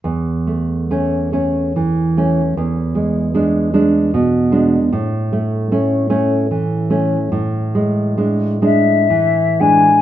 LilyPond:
<<
  \new Staff \with { instrumentName = "Flute" } { \time 6/8 \key a \major \tempo 4. = 49 r2. | r2. | r2. | r4. e''4 gis''8 | }
  \new Staff \with { instrumentName = "Nylon-string guitar" } { \time 6/8 \key a \major e,8 a8 <a cis'>8 <a cis'>8 e8 <a cis'>8 | e,8 gis8 <gis d'>8 <gis d'>8 b,8 <gis d'>8 | a,8 a8 <a cis'>8 <a cis'>8 e8 <a cis'>8 | a,8 gis8 <gis d'>8 <gis d'>8 e8 <gis d'>8 | }
>>